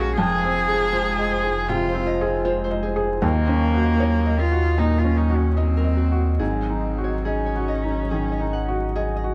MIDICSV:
0, 0, Header, 1, 6, 480
1, 0, Start_track
1, 0, Tempo, 760456
1, 113, Time_signature, 4, 2, 24, 8
1, 2035, Tempo, 783290
1, 3475, Tempo, 843882
1, 5619, End_track
2, 0, Start_track
2, 0, Title_t, "Harp"
2, 0, Program_c, 0, 46
2, 0, Note_on_c, 0, 68, 85
2, 0, Note_on_c, 0, 70, 95
2, 0, Note_on_c, 0, 73, 70
2, 0, Note_on_c, 0, 77, 72
2, 0, Note_on_c, 0, 80, 71
2, 108, Note_on_c, 0, 65, 99
2, 119, Note_off_c, 0, 68, 0
2, 132, Note_off_c, 0, 70, 0
2, 132, Note_off_c, 0, 73, 0
2, 344, Note_on_c, 0, 68, 65
2, 458, Note_off_c, 0, 68, 0
2, 466, Note_on_c, 0, 68, 76
2, 577, Note_off_c, 0, 65, 0
2, 584, Note_on_c, 0, 65, 90
2, 697, Note_off_c, 0, 68, 0
2, 705, Note_on_c, 0, 68, 62
2, 825, Note_on_c, 0, 72, 66
2, 1060, Note_off_c, 0, 65, 0
2, 1068, Note_on_c, 0, 65, 101
2, 1182, Note_off_c, 0, 72, 0
2, 1190, Note_on_c, 0, 72, 65
2, 1304, Note_on_c, 0, 75, 70
2, 1538, Note_off_c, 0, 65, 0
2, 1546, Note_on_c, 0, 65, 91
2, 1659, Note_off_c, 0, 72, 0
2, 1667, Note_on_c, 0, 72, 70
2, 1777, Note_off_c, 0, 68, 0
2, 1784, Note_on_c, 0, 68, 68
2, 1856, Note_off_c, 0, 80, 0
2, 2030, Note_on_c, 0, 63, 91
2, 2051, Note_off_c, 0, 65, 0
2, 2051, Note_off_c, 0, 68, 0
2, 2052, Note_off_c, 0, 72, 0
2, 2053, Note_off_c, 0, 77, 0
2, 2502, Note_off_c, 0, 63, 0
2, 2509, Note_on_c, 0, 63, 86
2, 2750, Note_on_c, 0, 70, 62
2, 2978, Note_off_c, 0, 63, 0
2, 2985, Note_on_c, 0, 63, 82
2, 3103, Note_off_c, 0, 70, 0
2, 3110, Note_on_c, 0, 70, 58
2, 3228, Note_on_c, 0, 85, 58
2, 3469, Note_off_c, 0, 63, 0
2, 3476, Note_on_c, 0, 63, 74
2, 3579, Note_off_c, 0, 70, 0
2, 3586, Note_on_c, 0, 70, 59
2, 3698, Note_off_c, 0, 75, 0
2, 3699, Note_on_c, 0, 66, 59
2, 3942, Note_on_c, 0, 68, 74
2, 3963, Note_off_c, 0, 70, 0
2, 4308, Note_on_c, 0, 73, 59
2, 4421, Note_off_c, 0, 68, 0
2, 4428, Note_on_c, 0, 68, 68
2, 4542, Note_off_c, 0, 73, 0
2, 4549, Note_on_c, 0, 73, 56
2, 4674, Note_on_c, 0, 75, 57
2, 4911, Note_off_c, 0, 68, 0
2, 4917, Note_on_c, 0, 68, 69
2, 5029, Note_off_c, 0, 75, 0
2, 5035, Note_on_c, 0, 75, 58
2, 5156, Note_on_c, 0, 78, 51
2, 5391, Note_off_c, 0, 68, 0
2, 5398, Note_on_c, 0, 68, 73
2, 5464, Note_off_c, 0, 85, 0
2, 5510, Note_off_c, 0, 75, 0
2, 5517, Note_on_c, 0, 75, 57
2, 5619, Note_off_c, 0, 63, 0
2, 5619, Note_off_c, 0, 66, 0
2, 5619, Note_off_c, 0, 68, 0
2, 5619, Note_off_c, 0, 73, 0
2, 5619, Note_off_c, 0, 75, 0
2, 5619, Note_off_c, 0, 78, 0
2, 5619, End_track
3, 0, Start_track
3, 0, Title_t, "Felt piano"
3, 0, Program_c, 1, 0
3, 0, Control_c, 1, 64, 127
3, 0, Note_on_c, 1, 53, 64
3, 0, Note_on_c, 1, 61, 71
3, 0, Note_on_c, 1, 68, 59
3, 0, Note_on_c, 1, 77, 66
3, 114, Note_on_c, 1, 41, 82
3, 115, Note_off_c, 1, 68, 0
3, 126, Control_c, 1, 64, 0
3, 128, Note_off_c, 1, 61, 0
3, 128, Note_off_c, 1, 77, 0
3, 131, Note_off_c, 1, 53, 0
3, 214, Control_c, 1, 64, 127
3, 274, Note_on_c, 1, 60, 66
3, 432, Note_on_c, 1, 68, 62
3, 526, Note_off_c, 1, 60, 0
3, 583, Note_on_c, 1, 72, 72
3, 686, Note_off_c, 1, 68, 0
3, 746, Note_on_c, 1, 75, 60
3, 843, Note_off_c, 1, 72, 0
3, 904, Note_on_c, 1, 68, 55
3, 1006, Note_off_c, 1, 75, 0
3, 1047, Note_off_c, 1, 41, 0
3, 1065, Note_on_c, 1, 48, 62
3, 1165, Note_off_c, 1, 68, 0
3, 1230, Note_on_c, 1, 60, 63
3, 1326, Note_off_c, 1, 48, 0
3, 1395, Note_on_c, 1, 68, 65
3, 1487, Note_off_c, 1, 60, 0
3, 1545, Note_on_c, 1, 72, 69
3, 1649, Note_off_c, 1, 68, 0
3, 1709, Note_on_c, 1, 75, 64
3, 1805, Note_off_c, 1, 72, 0
3, 1868, Note_on_c, 1, 68, 64
3, 1969, Note_off_c, 1, 75, 0
3, 2033, Note_off_c, 1, 68, 0
3, 2033, Note_on_c, 1, 39, 74
3, 2046, Control_c, 1, 64, 0
3, 2155, Control_c, 1, 64, 127
3, 2190, Note_on_c, 1, 61, 61
3, 2349, Note_on_c, 1, 66, 58
3, 2448, Note_off_c, 1, 61, 0
3, 2509, Note_on_c, 1, 73, 62
3, 2607, Note_off_c, 1, 66, 0
3, 2669, Note_on_c, 1, 75, 61
3, 2767, Note_off_c, 1, 73, 0
3, 2826, Note_on_c, 1, 66, 51
3, 2926, Note_off_c, 1, 75, 0
3, 2966, Note_off_c, 1, 39, 0
3, 2989, Note_on_c, 1, 46, 53
3, 3084, Note_off_c, 1, 66, 0
3, 3149, Note_on_c, 1, 61, 53
3, 3247, Note_off_c, 1, 46, 0
3, 3307, Note_on_c, 1, 66, 55
3, 3409, Note_off_c, 1, 61, 0
3, 3472, Note_on_c, 1, 75, 59
3, 3564, Note_off_c, 1, 66, 0
3, 3619, Note_off_c, 1, 75, 0
3, 3628, Note_on_c, 1, 75, 54
3, 3785, Note_on_c, 1, 66, 56
3, 3880, Note_off_c, 1, 75, 0
3, 3943, Note_on_c, 1, 44, 58
3, 3946, Note_off_c, 1, 66, 0
3, 3956, Control_c, 1, 64, 0
3, 4054, Control_c, 1, 64, 127
3, 4110, Note_on_c, 1, 63, 50
3, 4276, Note_on_c, 1, 66, 51
3, 4371, Note_off_c, 1, 63, 0
3, 4437, Note_on_c, 1, 75, 52
3, 4535, Note_off_c, 1, 66, 0
3, 4601, Note_on_c, 1, 66, 54
3, 4695, Note_off_c, 1, 75, 0
3, 4762, Note_on_c, 1, 63, 50
3, 4856, Note_off_c, 1, 66, 0
3, 4893, Note_off_c, 1, 44, 0
3, 4924, Note_on_c, 1, 51, 48
3, 5015, Note_off_c, 1, 63, 0
3, 5083, Note_on_c, 1, 63, 50
3, 5175, Note_off_c, 1, 51, 0
3, 5243, Note_on_c, 1, 66, 52
3, 5334, Note_off_c, 1, 63, 0
3, 5401, Note_on_c, 1, 75, 58
3, 5495, Note_off_c, 1, 66, 0
3, 5560, Note_on_c, 1, 66, 49
3, 5619, Note_off_c, 1, 66, 0
3, 5619, Note_off_c, 1, 75, 0
3, 5619, End_track
4, 0, Start_track
4, 0, Title_t, "Analog synth pad"
4, 0, Program_c, 2, 89
4, 0, Note_on_c, 2, 56, 61
4, 0, Note_on_c, 2, 61, 60
4, 0, Note_on_c, 2, 65, 64
4, 88, Note_off_c, 2, 61, 0
4, 99, Note_off_c, 2, 56, 0
4, 105, Note_on_c, 2, 72, 72
4, 107, Note_on_c, 2, 56, 66
4, 111, Note_on_c, 2, 63, 65
4, 116, Note_off_c, 2, 65, 0
4, 2007, Note_off_c, 2, 56, 0
4, 2027, Note_on_c, 2, 75, 67
4, 2028, Note_on_c, 2, 54, 73
4, 2031, Note_off_c, 2, 72, 0
4, 3939, Note_off_c, 2, 63, 0
4, 3942, Note_off_c, 2, 75, 0
4, 3946, Note_on_c, 2, 63, 67
4, 3948, Note_on_c, 2, 75, 60
4, 5619, Note_off_c, 2, 54, 0
4, 5619, Note_off_c, 2, 63, 0
4, 5619, Note_off_c, 2, 75, 0
4, 5619, End_track
5, 0, Start_track
5, 0, Title_t, "Cello"
5, 0, Program_c, 3, 42
5, 0, Note_on_c, 3, 66, 95
5, 103, Note_off_c, 3, 66, 0
5, 106, Note_on_c, 3, 68, 126
5, 1061, Note_on_c, 3, 65, 106
5, 1071, Note_off_c, 3, 68, 0
5, 1547, Note_off_c, 3, 65, 0
5, 2038, Note_on_c, 3, 58, 113
5, 2757, Note_on_c, 3, 65, 103
5, 2766, Note_off_c, 3, 58, 0
5, 2993, Note_on_c, 3, 63, 94
5, 3002, Note_off_c, 3, 65, 0
5, 3114, Note_on_c, 3, 65, 83
5, 3123, Note_off_c, 3, 63, 0
5, 3227, Note_on_c, 3, 63, 82
5, 3236, Note_off_c, 3, 65, 0
5, 3345, Note_on_c, 3, 61, 82
5, 3354, Note_off_c, 3, 63, 0
5, 3463, Note_on_c, 3, 60, 98
5, 3472, Note_off_c, 3, 61, 0
5, 3937, Note_off_c, 3, 60, 0
5, 3941, Note_on_c, 3, 60, 77
5, 4429, Note_on_c, 3, 61, 84
5, 4438, Note_off_c, 3, 60, 0
5, 5619, Note_off_c, 3, 61, 0
5, 5619, End_track
6, 0, Start_track
6, 0, Title_t, "Sub bass"
6, 0, Program_c, 4, 38
6, 0, Note_on_c, 4, 34, 73
6, 105, Note_on_c, 4, 29, 75
6, 114, Note_off_c, 4, 34, 0
6, 2035, Note_on_c, 4, 39, 76
6, 2044, Note_off_c, 4, 29, 0
6, 3940, Note_on_c, 4, 32, 69
6, 3948, Note_off_c, 4, 39, 0
6, 5619, Note_off_c, 4, 32, 0
6, 5619, End_track
0, 0, End_of_file